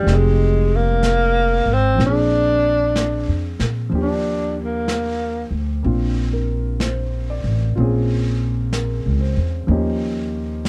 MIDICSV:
0, 0, Header, 1, 5, 480
1, 0, Start_track
1, 0, Key_signature, -3, "major"
1, 0, Tempo, 963082
1, 35, Time_signature, 4, 2, 24, 8
1, 5327, End_track
2, 0, Start_track
2, 0, Title_t, "Grand piano"
2, 0, Program_c, 0, 0
2, 0, Control_c, 0, 64, 127
2, 11, Note_on_c, 0, 53, 51
2, 24, Note_on_c, 0, 56, 46
2, 39, Note_on_c, 0, 60, 45
2, 41, Control_c, 0, 64, 0
2, 51, Note_on_c, 0, 63, 43
2, 64, Note_on_c, 0, 67, 54
2, 121, Control_c, 0, 64, 127
2, 964, Note_off_c, 0, 53, 0
2, 972, Note_on_c, 0, 53, 42
2, 985, Note_on_c, 0, 58, 42
2, 989, Note_off_c, 0, 56, 0
2, 989, Note_off_c, 0, 60, 0
2, 997, Note_on_c, 0, 60, 45
2, 1000, Control_c, 0, 64, 0
2, 1002, Note_off_c, 0, 63, 0
2, 1008, Note_off_c, 0, 67, 0
2, 1012, Note_on_c, 0, 62, 42
2, 1026, Note_on_c, 0, 68, 53
2, 1096, Control_c, 0, 64, 127
2, 1933, Note_off_c, 0, 53, 0
2, 1941, Note_on_c, 0, 53, 48
2, 1943, Note_off_c, 0, 58, 0
2, 1950, Note_off_c, 0, 62, 0
2, 1950, Note_on_c, 0, 58, 43
2, 1956, Note_off_c, 0, 60, 0
2, 1958, Note_on_c, 0, 62, 43
2, 1963, Control_c, 0, 64, 0
2, 1969, Note_on_c, 0, 67, 54
2, 1971, Note_off_c, 0, 68, 0
2, 2063, Control_c, 0, 64, 127
2, 2897, Note_off_c, 0, 58, 0
2, 2905, Note_on_c, 0, 58, 35
2, 2906, Note_off_c, 0, 62, 0
2, 2910, Note_on_c, 0, 60, 35
2, 2913, Note_on_c, 0, 62, 33
2, 2919, Note_on_c, 0, 65, 41
2, 3156, Note_on_c, 0, 70, 38
2, 3393, Note_on_c, 0, 72, 46
2, 3495, Note_off_c, 0, 70, 0
2, 3638, Note_on_c, 0, 74, 44
2, 3772, Note_off_c, 0, 72, 0
2, 3858, Note_off_c, 0, 65, 0
2, 3865, Note_off_c, 0, 58, 0
2, 3865, Note_on_c, 0, 65, 47
2, 3867, Note_off_c, 0, 53, 0
2, 3869, Note_off_c, 0, 60, 0
2, 3872, Note_on_c, 0, 58, 44
2, 3873, Note_off_c, 0, 62, 0
2, 3876, Note_on_c, 0, 60, 43
2, 3881, Note_off_c, 0, 67, 0
2, 3881, Control_c, 0, 64, 0
2, 3885, Note_on_c, 0, 61, 41
2, 3888, Note_on_c, 0, 68, 54
2, 3972, Control_c, 0, 64, 127
2, 3976, Note_off_c, 0, 74, 0
2, 4352, Note_on_c, 0, 70, 37
2, 4589, Note_on_c, 0, 72, 41
2, 4730, Note_off_c, 0, 70, 0
2, 4817, Note_off_c, 0, 58, 0
2, 4819, Note_on_c, 0, 53, 50
2, 4824, Note_off_c, 0, 61, 0
2, 4825, Note_on_c, 0, 58, 45
2, 4828, Note_off_c, 0, 65, 0
2, 4832, Note_on_c, 0, 61, 43
2, 4833, Note_off_c, 0, 60, 0
2, 4839, Note_off_c, 0, 68, 0
2, 4839, Control_c, 0, 64, 0
2, 4839, Note_on_c, 0, 63, 45
2, 4842, Note_on_c, 0, 67, 52
2, 4930, Note_off_c, 0, 72, 0
2, 4936, Control_c, 0, 64, 127
2, 5327, Note_off_c, 0, 53, 0
2, 5327, Note_off_c, 0, 58, 0
2, 5327, Note_off_c, 0, 61, 0
2, 5327, Note_off_c, 0, 63, 0
2, 5327, Note_off_c, 0, 67, 0
2, 5327, End_track
3, 0, Start_track
3, 0, Title_t, "Tenor saxophone"
3, 0, Program_c, 1, 66
3, 0, Note_on_c, 1, 55, 74
3, 73, Note_on_c, 1, 56, 77
3, 81, Note_off_c, 1, 55, 0
3, 378, Note_on_c, 1, 58, 95
3, 385, Note_off_c, 1, 56, 0
3, 862, Note_on_c, 1, 60, 80
3, 869, Note_off_c, 1, 58, 0
3, 1009, Note_off_c, 1, 60, 0
3, 1027, Note_on_c, 1, 62, 103
3, 1789, Note_off_c, 1, 62, 0
3, 2002, Note_on_c, 1, 62, 63
3, 2276, Note_off_c, 1, 62, 0
3, 2310, Note_on_c, 1, 58, 59
3, 2751, Note_off_c, 1, 58, 0
3, 5327, End_track
4, 0, Start_track
4, 0, Title_t, "Upright bass"
4, 0, Program_c, 2, 32
4, 33, Note_on_c, 2, 29, 80
4, 811, Note_off_c, 2, 29, 0
4, 826, Note_on_c, 2, 32, 57
4, 980, Note_off_c, 2, 32, 0
4, 989, Note_on_c, 2, 34, 70
4, 1612, Note_off_c, 2, 34, 0
4, 1635, Note_on_c, 2, 41, 57
4, 1784, Note_off_c, 2, 41, 0
4, 1794, Note_on_c, 2, 46, 63
4, 1943, Note_off_c, 2, 46, 0
4, 1952, Note_on_c, 2, 39, 64
4, 2731, Note_off_c, 2, 39, 0
4, 2744, Note_on_c, 2, 38, 57
4, 2899, Note_off_c, 2, 38, 0
4, 2913, Note_on_c, 2, 34, 70
4, 3691, Note_off_c, 2, 34, 0
4, 3708, Note_on_c, 2, 33, 65
4, 3861, Note_off_c, 2, 33, 0
4, 3875, Note_on_c, 2, 34, 71
4, 4493, Note_off_c, 2, 34, 0
4, 4514, Note_on_c, 2, 37, 58
4, 4662, Note_off_c, 2, 37, 0
4, 4670, Note_on_c, 2, 40, 58
4, 4819, Note_off_c, 2, 40, 0
4, 4824, Note_on_c, 2, 39, 72
4, 5327, Note_off_c, 2, 39, 0
4, 5327, End_track
5, 0, Start_track
5, 0, Title_t, "Drums"
5, 37, Note_on_c, 9, 25, 34
5, 37, Note_on_c, 9, 38, 29
5, 87, Note_off_c, 9, 38, 0
5, 512, Note_off_c, 9, 25, 0
5, 512, Note_on_c, 9, 25, 34
5, 512, Note_on_c, 9, 38, 44
5, 512, Note_on_c, 9, 44, 57
5, 562, Note_off_c, 9, 38, 0
5, 562, Note_off_c, 9, 44, 0
5, 995, Note_off_c, 9, 25, 0
5, 995, Note_on_c, 9, 25, 30
5, 995, Note_on_c, 9, 38, 25
5, 1045, Note_off_c, 9, 38, 0
5, 1474, Note_off_c, 9, 25, 0
5, 1474, Note_on_c, 9, 25, 32
5, 1474, Note_on_c, 9, 38, 44
5, 1474, Note_on_c, 9, 44, 46
5, 1524, Note_off_c, 9, 38, 0
5, 1524, Note_off_c, 9, 44, 0
5, 1792, Note_on_c, 9, 38, 27
5, 1842, Note_off_c, 9, 38, 0
5, 1952, Note_off_c, 9, 25, 0
5, 1952, Note_on_c, 9, 25, 31
5, 2432, Note_off_c, 9, 25, 0
5, 2432, Note_on_c, 9, 25, 37
5, 2432, Note_on_c, 9, 38, 41
5, 2432, Note_on_c, 9, 44, 46
5, 2482, Note_off_c, 9, 38, 0
5, 2482, Note_off_c, 9, 44, 0
5, 2910, Note_off_c, 9, 25, 0
5, 2910, Note_on_c, 9, 25, 28
5, 3389, Note_off_c, 9, 25, 0
5, 3389, Note_on_c, 9, 25, 36
5, 3389, Note_on_c, 9, 38, 39
5, 3389, Note_on_c, 9, 44, 49
5, 3439, Note_off_c, 9, 38, 0
5, 3439, Note_off_c, 9, 44, 0
5, 3870, Note_off_c, 9, 25, 0
5, 3870, Note_on_c, 9, 25, 38
5, 4350, Note_off_c, 9, 25, 0
5, 4350, Note_on_c, 9, 25, 35
5, 4350, Note_on_c, 9, 38, 40
5, 4350, Note_on_c, 9, 44, 48
5, 4399, Note_off_c, 9, 38, 0
5, 4399, Note_off_c, 9, 44, 0
5, 4830, Note_off_c, 9, 25, 0
5, 4830, Note_on_c, 9, 25, 31
5, 5309, Note_off_c, 9, 25, 0
5, 5309, Note_on_c, 9, 25, 35
5, 5309, Note_on_c, 9, 38, 39
5, 5309, Note_on_c, 9, 44, 43
5, 5327, Note_off_c, 9, 25, 0
5, 5327, Note_off_c, 9, 38, 0
5, 5327, Note_off_c, 9, 44, 0
5, 5327, End_track
0, 0, End_of_file